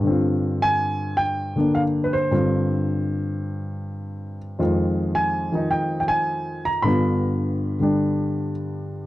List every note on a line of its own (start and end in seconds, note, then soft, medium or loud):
0.00 2.29 G2 soft
0.00 1.54 D3 soft
0.07 2.31 C4 soft
0.07 2.31 F4 soft
0.62 1.20 G#5 medium
1.17 1.70 G5 medium
1.56 2.30 D3 soft
1.56 2.32 A#3 soft
1.56 2.32 D4 soft
1.75 1.81 F5 medium
2.04 2.14 B4 soft
2.13 4.36 C5 medium
2.31 4.58 G2 soft
2.31 4.58 D3 soft
2.31 4.59 C4 soft
2.31 4.59 F4 soft
4.59 6.86 F2 soft
4.59 5.50 D#3 soft
4.59 6.86 G#3 soft
4.59 6.86 F4 soft
5.15 5.68 G#5 medium
5.52 6.85 D#3 soft
5.52 6.86 F3 soft
5.52 6.87 D#4 soft
5.71 5.98 G5 medium
6.00 6.10 G5 soft
6.08 6.68 G#5 medium
6.65 6.83 A#5 medium
6.82 9.06 G2 soft
6.82 7.78 D3 soft
6.82 9.06 B3 soft
6.82 8.50 B5 medium
6.88 9.06 F4 soft
7.79 9.06 D3 soft
7.79 9.06 G3 soft
7.79 9.06 D4 soft